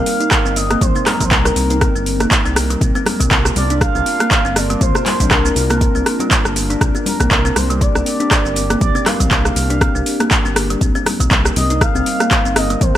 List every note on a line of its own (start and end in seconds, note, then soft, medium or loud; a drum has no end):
0.00 2.77 G3 medium
0.00 2.77 C4 medium
0.00 2.77 D#4 medium
0.00 10.77 A#4 medium
0.00 0.58 F5 loud
0.06 open hi-hat medium
0.06 shaker medium
0.20 0.30 D#4 medium
0.20 closed hi-hat medium
0.20 muted conga soft
0.20 shaker medium
0.31 kick loud
0.31 cross-stick medium
0.31 clap loud
0.31 closed hi-hat soft
0.31 shaker loud
0.45 0.77 G1 medium
0.45 0.56 C4 medium
0.45 shaker medium
0.56 0.83 D#5 loud
0.56 open hi-hat medium
0.56 muted conga medium
0.56 shaker loud
0.70 0.81 A#3 medium
0.70 cross-stick medium
0.70 closed hi-hat medium
0.70 high conga medium
0.70 shaker medium
0.81 0.92 C2 loud
0.81 1.06 C5 loud
0.81 kick loud
0.81 closed hi-hat soft
0.81 mid tom medium
0.81 high conga medium
0.81 shaker loud
0.95 1.01 C4 loud
0.95 muted conga soft
0.95 shaker medium
1.06 1.24 A#4 medium
1.06 cross-stick medium
1.06 clap medium
1.06 open hi-hat medium
1.06 low conga loud
1.06 shaker medium
1.20 1.52 C2 loud
1.20 1.30 G3 medium
1.20 kick medium
1.20 closed hi-hat medium
1.20 mid tom medium
1.20 high conga loud
1.20 shaker loud
1.25 1.33 C5 medium
1.31 2.56 A#4 medium
1.31 kick loud
1.31 clap loud
1.31 closed hi-hat soft
1.31 muted conga soft
1.31 shaker medium
1.45 1.56 A#4 loud
1.45 cross-stick medium
1.45 shaker loud
1.56 1.89 C2 loud
1.56 open hi-hat medium
1.56 high conga medium
1.56 shaker loud
1.70 1.80 D#4 medium
1.70 closed hi-hat medium
1.70 muted conga soft
1.70 shaker medium
1.81 kick loud
1.81 cross-stick medium
1.81 closed hi-hat soft
1.81 high conga loud
1.81 shaker medium
1.95 2.27 G1 loud
1.95 2.06 C4 medium
1.95 shaker medium
2.06 open hi-hat medium
2.06 shaker medium
2.20 2.31 A#3 medium
2.20 cross-stick medium
2.20 closed hi-hat medium
2.20 muted conga soft
2.20 high conga loud
2.20 shaker medium
2.31 kick loud
2.31 clap loud
2.31 closed hi-hat soft
2.31 shaker loud
2.45 2.77 C2 loud
2.45 2.51 C4 loud
2.45 shaker medium
2.56 cross-stick loud
2.56 open hi-hat medium
2.56 muted conga medium
2.56 shaker loud
2.70 2.80 G3 medium
2.70 closed hi-hat medium
2.70 shaker medium
2.81 2.91 C2 loud
2.81 10.77 D4 medium
2.81 6.77 F4 medium
2.81 kick loud
2.81 closed hi-hat soft
2.81 high conga medium
2.81 shaker medium
2.95 3.01 C4 loud
2.95 muted conga soft
2.95 shaker medium
3.06 cross-stick medium
3.06 open hi-hat medium
3.06 low conga loud
3.06 shaker medium
3.20 3.51 C2 loud
3.20 3.30 G3 medium
3.20 kick medium
3.20 closed hi-hat medium
3.20 high conga medium
3.20 shaker loud
3.31 kick loud
3.31 clap loud
3.31 closed hi-hat soft
3.31 muted conga soft
3.31 shaker medium
3.45 3.55 G4 medium
3.45 cross-stick medium
3.45 shaker loud
3.56 3.89 C2 medium
3.56 3.80 D5 loud
3.56 open hi-hat medium
3.56 high conga medium
3.56 low conga medium
3.56 shaker medium
3.70 3.80 D4 medium
3.70 closed hi-hat medium
3.70 muted conga soft
3.70 shaker medium
3.81 4.58 F5 loud
3.81 kick loud
3.81 cross-stick medium
3.81 closed hi-hat soft
3.81 shaker medium
3.95 4.03 C2 loud
3.95 4.06 C4 medium
3.95 high conga loud
3.95 shaker medium
4.06 open hi-hat medium
4.06 shaker medium
4.20 4.31 A#3 medium
4.20 cross-stick medium
4.20 closed hi-hat medium
4.20 muted conga soft
4.20 shaker medium
4.31 kick loud
4.31 clap loud
4.31 closed hi-hat soft
4.31 shaker medium
4.45 4.76 G1 medium
4.45 4.51 C4 loud
4.45 shaker medium
4.56 4.83 D5 loud
4.56 cross-stick medium
4.56 open hi-hat medium
4.56 muted conga soft
4.56 shaker medium
4.70 4.80 G3 medium
4.70 closed hi-hat medium
4.70 high conga medium
4.70 shaker medium
4.81 4.91 C2 loud
4.81 5.06 C5 loud
4.81 kick loud
4.81 closed hi-hat soft
4.81 mid tom medium
4.81 high conga medium
4.81 shaker medium
4.95 5.05 G4 medium
4.95 cross-stick medium
4.95 muted conga medium
4.95 shaker medium
5.06 5.33 C5 medium
5.06 clap medium
5.06 open hi-hat medium
5.06 low conga loud
5.06 shaker soft
5.20 5.51 C2 loud
5.20 5.30 D4 medium
5.20 kick medium
5.20 closed hi-hat medium
5.20 mid tom medium
5.20 high conga medium
5.20 shaker medium
5.31 6.56 A#4 medium
5.31 kick loud
5.31 cross-stick medium
5.31 clap loud
5.31 closed hi-hat soft
5.31 muted conga soft
5.31 shaker soft
5.45 5.56 C4 medium
5.45 shaker medium
5.55 5.89 C2 medium
5.55 open hi-hat medium
5.55 high conga medium
5.55 shaker medium
5.70 5.81 A#3 medium
5.70 cross-stick medium
5.70 closed hi-hat medium
5.70 muted conga medium
5.70 shaker medium
5.81 kick loud
5.81 closed hi-hat soft
5.81 high conga loud
5.81 shaker medium
5.95 6.03 C2 loud
5.95 6.01 C4 loud
5.95 shaker medium
6.06 cross-stick medium
6.06 open hi-hat medium
6.06 shaker medium
6.19 6.30 G3 medium
6.19 closed hi-hat medium
6.19 muted conga soft
6.19 high conga loud
6.19 shaker medium
6.31 kick loud
6.31 clap loud
6.31 closed hi-hat soft
6.31 shaker medium
6.45 6.76 G1 medium
6.45 6.55 G4 medium
6.45 cross-stick medium
6.45 shaker medium
6.56 open hi-hat medium
6.56 muted conga medium
6.56 shaker medium
6.70 6.80 D4 medium
6.70 closed hi-hat medium
6.70 shaker soft
6.81 6.91 C2 loud
6.81 10.77 G4 medium
6.81 kick loud
6.81 cross-stick medium
6.81 closed hi-hat soft
6.81 high conga medium
6.81 shaker medium
6.95 7.06 C4 medium
6.95 muted conga medium
6.95 shaker medium
7.06 7.58 A#4 medium
7.06 open hi-hat medium
7.06 low conga loud
7.06 shaker soft
7.20 7.51 C2 loud
7.20 7.31 A#3 medium
7.20 kick medium
7.20 cross-stick medium
7.20 closed hi-hat medium
7.20 high conga medium
7.20 shaker medium
7.31 kick loud
7.31 clap loud
7.31 closed hi-hat soft
7.31 muted conga soft
7.31 shaker soft
7.45 7.51 C4 loud
7.45 shaker medium
7.56 7.89 C2 loud
7.56 7.82 C5 medium
7.56 cross-stick medium
7.56 open hi-hat medium
7.56 high conga medium
7.56 low conga medium
7.56 shaker medium
7.70 7.80 G3 medium
7.70 closed hi-hat medium
7.70 muted conga medium
7.70 shaker medium
7.81 8.81 D5 loud
7.81 kick loud
7.81 closed hi-hat soft
7.81 shaker medium
7.95 8.03 C2 loud
7.95 8.05 G4 medium
7.95 cross-stick medium
7.95 high conga medium
7.95 shaker medium
8.06 open hi-hat medium
8.06 shaker soft
8.20 8.30 D4 medium
8.20 closed hi-hat medium
8.20 muted conga soft
8.20 shaker medium
8.31 kick loud
8.31 cross-stick medium
8.31 clap loud
8.31 closed hi-hat soft
8.31 shaker medium
8.45 8.76 G1 medium
8.45 8.56 C4 medium
8.45 shaker soft
8.56 open hi-hat loud
8.56 muted conga medium
8.56 shaker medium
8.70 8.81 A#3 medium
8.70 cross-stick medium
8.70 closed hi-hat medium
8.70 high conga medium
8.70 shaker soft
8.81 8.91 C2 loud
8.81 9.07 D5 loud
8.81 kick loud
8.81 closed hi-hat soft
8.81 mid tom medium
8.81 high conga medium
8.81 shaker medium
8.95 9.01 C4 loud
8.95 muted conga medium
8.95 shaker medium
9.06 10.56 F5 loud
9.06 cross-stick medium
9.06 clap soft
9.06 open hi-hat medium
9.06 low conga loud
9.06 shaker medium
9.20 9.51 C2 loud
9.20 9.30 G3 medium
9.20 kick medium
9.20 closed hi-hat medium
9.20 mid tom medium
9.20 high conga medium
9.20 shaker medium
9.31 kick loud
9.31 clap loud
9.31 closed hi-hat soft
9.31 muted conga soft
9.31 shaker medium
9.45 9.55 G4 medium
9.45 cross-stick medium
9.45 shaker medium
9.55 9.89 C2 loud
9.55 open hi-hat loud
9.55 high conga medium
9.55 shaker medium
9.70 9.80 D4 medium
9.70 closed hi-hat medium
9.70 muted conga medium
9.70 shaker medium
9.81 kick loud
9.81 cross-stick loud
9.81 closed hi-hat soft
9.81 high conga medium
9.81 shaker medium
9.95 10.03 C2 loud
9.95 10.06 C4 medium
9.95 shaker medium
10.06 open hi-hat medium
10.06 shaker medium
10.20 10.31 A#3 medium
10.20 cross-stick medium
10.20 closed hi-hat medium
10.20 muted conga soft
10.20 high conga medium
10.20 shaker medium
10.31 kick loud
10.31 clap loud
10.31 closed hi-hat soft
10.31 shaker medium
10.45 10.76 G1 medium
10.45 10.51 C4 loud
10.45 shaker medium
10.56 cross-stick loud
10.56 open hi-hat loud
10.56 muted conga medium
10.56 shaker medium
10.70 10.80 G3 medium
10.70 closed hi-hat medium
10.70 shaker medium
10.81 10.91 C2 loud
10.81 12.98 G3 medium
10.81 12.98 C4 medium
10.81 12.98 D#4 medium
10.81 12.98 A#4 medium
10.81 kick loud
10.81 closed hi-hat soft
10.81 high conga medium
10.81 shaker medium
10.95 11.01 C4 loud
10.95 muted conga medium
10.95 shaker medium
11.06 cross-stick medium
11.06 open hi-hat medium
11.06 low conga loud
11.06 shaker medium
11.20 11.51 C2 loud
11.20 11.30 G3 medium
11.20 kick medium
11.20 closed hi-hat medium
11.20 high conga medium
11.20 shaker medium
11.31 kick loud
11.31 clap loud
11.31 closed hi-hat soft
11.31 muted conga soft
11.31 shaker medium
11.45 11.55 G4 medium
11.45 cross-stick medium
11.45 shaker medium
11.56 11.89 C2 medium
11.56 11.83 D#5 loud
11.56 open hi-hat loud
11.56 high conga medium
11.56 low conga medium
11.56 shaker medium
11.70 11.80 D#4 medium
11.70 closed hi-hat medium
11.70 muted conga medium
11.70 shaker medium
11.81 12.58 F5 loud
11.81 kick loud
11.81 cross-stick loud
11.81 closed hi-hat soft
11.81 shaker medium
11.95 12.03 C2 loud
11.95 12.06 C4 medium
11.95 high conga loud
11.95 shaker medium
12.06 open hi-hat loud
12.06 shaker medium
12.20 12.31 A#3 medium
12.20 cross-stick medium
12.20 closed hi-hat medium
12.20 muted conga soft
12.20 shaker medium
12.31 kick loud
12.31 clap loud
12.31 closed hi-hat soft
12.31 shaker medium
12.45 12.76 G1 medium
12.45 12.51 C4 loud
12.45 shaker medium
12.56 12.83 D#5 loud
12.56 cross-stick loud
12.56 open hi-hat loud
12.56 muted conga medium
12.56 shaker medium
12.70 12.80 G3 medium
12.70 closed hi-hat medium
12.70 high conga medium
12.70 shaker medium
12.81 12.91 C2 loud
12.81 12.98 C5 loud
12.81 kick loud
12.81 closed hi-hat soft
12.81 mid tom medium
12.81 high conga medium
12.81 shaker loud